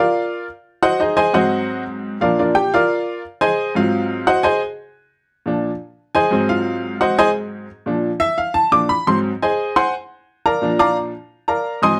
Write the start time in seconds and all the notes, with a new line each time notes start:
Already playing: F4 A#4 D5 F5
0.83 F#4 C5 D#5 F#5
1.00 D#4 G#4 C5 D#5
1.17 G#4 C5 D#5 G#5
1.33 G#2 F#3 C4 F#4 C5 D#5 F#5
2.21 A#2 F3 D4 F4 A#4 D5 F5
2.39 D4 F4 A#4 D5
2.55 G4 G5
2.74 F4 A#4 D5 F5
3.41 G#4 C5 D#5 G#5
3.75 G#2 F#3 C4 F4 F5
4.27 F#4 C5 D#5 F#5
4.43 G#4 C5 D#5 G#5
5.46 A#2 F3 D4
6.15 G#4 C5 D#5 G#5
6.31 G#2 F#3 C4
6.49 F4 F5
7.01 F#4 C5 D#5 F#5
7.18 G#4 C5 D#5 G#5
7.86 A#2 F3 D4
8.20 E5
8.38 F5
8.54 A5
8.72 A#2 F3 D4 D6
8.89 B5
9.07 G#2 F#3 C4 C6
9.42 G#4 C5 D#5 G#5
9.76 C5 F#5 G#5 C6
10.46 A#4 D5 F5 A#5
10.62 A#2 F3 D4
10.79 D5 F5 A#5 D6
11.48 A#4 D5 F5 A#5
11.82 G#2 F#3 C4 D#5 G#5 C6 D#6